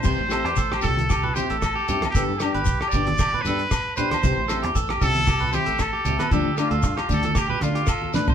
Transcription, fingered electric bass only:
X:1
M:4/4
L:1/16
Q:"Swing 16ths" 1/4=115
K:C
V:1 name="Fingered electric bass" clef=bass
C,, A,,,2 E,, A,,,2 C,,4- C,, A,,,3 G,, z | G,,, G,,2 G,,, B,,, z G,,,4 G,,2 z4 | C,, A,,,2 E,, A,,,2 C,,4- C,, A,,,3 _D,, z | D,, D,2 D,, G,, z D,,4 D,2 z4 |]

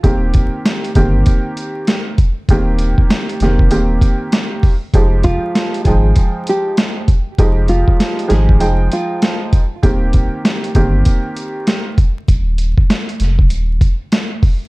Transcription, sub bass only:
X:1
M:4/4
L:1/16
Q:"Swing 16ths" 1/4=98
K:Ebmix
V:1 name="Sub bass" clef=bass
E,,,3 z3 G,,,2 z8 | E,,,3 z3 F,,,2 E,,,2 z6 | F,,,3 z3 A,,,2 z8 | F,,,3 z3 A,,,2 F,,,2 z6 |
E,,,3 z3 G,,,2 z8 | E,,,3 z3 F,,,2 E,,,2 z6 |]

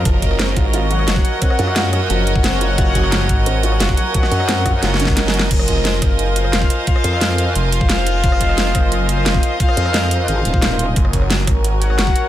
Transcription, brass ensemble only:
X:1
M:4/4
L:1/16
Q:1/4=176
K:Fphr
V:1 name="Brass ensemble"
z8 z2 [Gdg]6 | [Gdg]6- [Gdg] [Gdg]8- [Gdg]- | [Gdg]8- [Gdg]2 [Gdg]6 | [Gdg]6- [Gdg] [Gdg]6- [Gdg] [Gdg] z |
z8 z2 [Fcf]6 | [Fcf]6- [Fcf] [Fcf]8- [Fcf]- | [Fcf]8- [Fcf]2 [Fcf]6 | [Fcf]6- [Fcf] [Fcf]8- [Fcf] |
z8 z2 [Gdg]6 |]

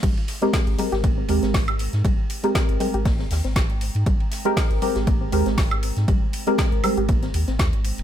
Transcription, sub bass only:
X:1
M:4/4
L:1/16
Q:"Swing 16ths" 1/4=119
K:Ab
V:1 name="Sub bass" clef=bass
A,,, z4 A,,, z A,,,3 E,, A,,,4 A,, | A,,, z4 A,,, z A,,,3 E,, A,,,4 A,, | A,,, z4 A,,, z A,,,3 E,, A,,,4 A,, | A,,, z4 A,,, z A,,,3 E,, A,,, E,, A,,,2 E,,, |]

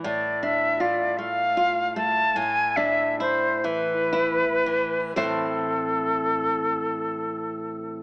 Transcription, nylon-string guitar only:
X:1
M:6/8
L:1/8
Q:3/8=44
K:Am
V:1 name="Nylon-string guitar"
A,, D F A, F A, | A,, D E E, E E, | [A,,E,CEAc]6 |]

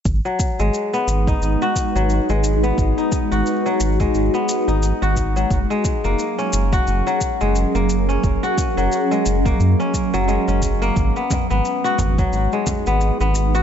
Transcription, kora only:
X:1
M:4/4
L:1/16
Q:"Swing 16ths" 1/4=88
K:G#m
V:1 name="Kora"
z F, z G, z B, z D2 F2 F, z G, z B, | z D2 F2 F, z G, z B, z D2 F2 F, | z G, z A, z C2 F2 F, z G, z A, z C- | C F2 F, z G, z A, z C z F, G, C z A, |
z B, z B, z F2 F, z G, z B, z B, z F |]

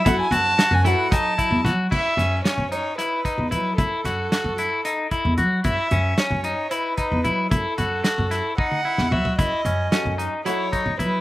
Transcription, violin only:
X:1
M:7/8
L:1/16
Q:1/4=112
K:F#dor
V:1 name="Violin"
f g a3 g f2 a4 z2 | e4 c2 c2 B4 B2 | A12 z2 | e4 c4 B6 |
A8 f4 e2 | d6 z2 c4 B2 |]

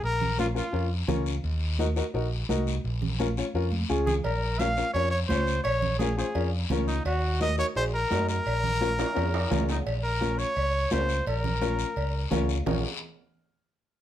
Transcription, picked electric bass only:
X:1
M:4/4
L:1/8
Q:1/4=171
K:Bbm
V:1 name="Picked electric bass" clef=bass
B,,,4 F,,2 D,,2 | E,,4 B,,,2 C,,2 | B,,,4 F,,2 D,,2 | B,,,4 F,,2 D,,2 |
B,,,4 F,,2 D,,2 | E,,4 B,,,2 G,,2 | B,,,4 F,,2 D,,2 | B,,,4 D,,2 D,,2 |
B,,,4 D,,2 D,,2 | B,,, z6 z |]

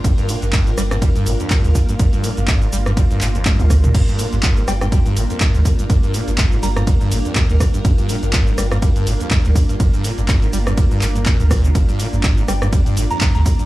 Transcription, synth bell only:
X:1
M:4/4
L:1/16
Q:"Swing 16ths" 1/4=123
K:Gm
V:1 name="Synth bell"
z16 | z16 | z6 g g g z6 z | z6 b b z8 |
z16 | z16 | z6 g z4 b b b b z |]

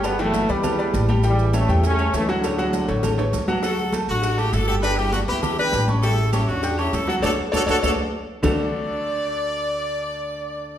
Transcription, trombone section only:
X:1
M:4/4
L:1/8
Q:1/4=200
K:D
V:1 name="Trombone section" clef=bass
[G,B,] [F,A,]2 [E,G,]4 z | [E,G,]2 [E,A,]2 [A,C]2 [E,A,] [A,,D,]- | [A,,D,]6 z2 | z8 |
z8 | z8 | z8 | z8 |
z8 |]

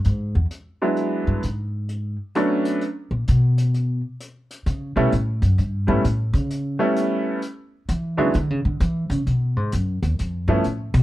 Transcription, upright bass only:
X:1
M:4/4
L:1/8
Q:"Swing" 1/4=130
K:Emix
V:1 name="Upright bass" clef=bass
G,, E,, z3 =G,, ^G,,2- | G,, z4 ^A,, B,,2- | B,, z3 C, B,, A,, F,, | =G,, ^G,, A,, C,2 z3 |
z2 E, C, (3D, C, D, E, C, | B,, G,, F,, ^D,, ^E,, =G,, A,, B,, |]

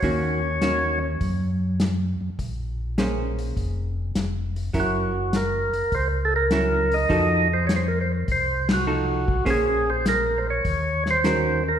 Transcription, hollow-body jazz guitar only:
X:1
M:4/4
L:1/8
Q:"Swing" 1/4=102
K:Bbm
V:1 name="Hollow-body jazz guitar"
[E,B,DG] z [E,B,DG] z4 z | z2 [B,DAc]3 z3 | [G,D_FB] z4 z [G,DFB] z | [F,EG=A] z4 z [F,EGA] z |
[B,DAc] z4 z [E,DGB] z |]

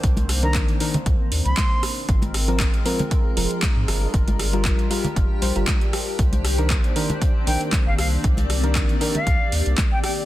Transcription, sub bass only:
X:1
M:4/4
L:1/16
Q:"Swing 16ths" 1/4=117
K:Cm
V:1 name="Sub bass" clef=bass
C,,4- C,, z3 C,, z E,, C,, z4 | A,,,4- A,,, z4 z F,,, z2 A,, G,,, z | G,,,4- G,,, z3 G,,, z B,,, G,,, z4 | C,,4- C,, z4 z B,,, z2 G,,, C,, z |
C,,4- C,, z3 C,, z E,, C,, z4 |]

